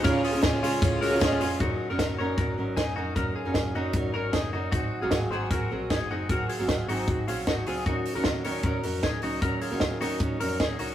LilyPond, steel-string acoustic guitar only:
\new Staff \with { instrumentName = "Steel-string acoustic guitar" } { \time 4/4 \key aes \mixolydian \tempo 4 = 153 <des aes des' f' aes'>8. <des' f' aes'>8. <aes des' f' aes'>4~ <aes des' f' aes'>16 <des' f' aes'>16 <aes des' f' aes'>8 <aes des' f' aes'>8 | <ges des' ees' bes'>8. <ges des' ees' bes'>8. <ges des' ees' bes'>8 <ges des' ees' bes'>8 <ges des' ees' bes'>4 <ges des' ees' bes'>8 | <ges des' ees' bes'>8. <ges des' ees' bes'>8. <ges des' ees' bes'>8 <ges des' ees' bes'>8 <ges des' ees' bes'>4 <ges des' ees' bes'>8 | <ges c' ges' aes'>8. <aes, ees ges c' ges' aes'>8. <aes, ees ges c' ges' aes'>8 <ges c' ges' aes'>8 <ges c' ges' aes'>4 <ges c' ges' aes'>8 |
<ges c' ges' aes'>8. <aes, ees ges c' ges' aes'>8. <aes, ees ges c' ges' aes'>8 <ges c' ges' aes'>8 <ges c' ges' aes'>4 <ges c' ges' aes'>8 | <ges des' ees' bes'>8. <ees ges des' ees' bes'>8. <ees ges des' ees' bes'>8 <ges des' ees' bes'>8 <ges des' ees' bes'>4 <ges des' ees' bes'>8 | <ges des' ees' bes'>8. <ees ges des' ees' bes'>8. <ees ges des' ees' bes'>8 <ges des' ees' bes'>8 <ges des' ees' bes'>4 <ges des' ees' bes'>8 | }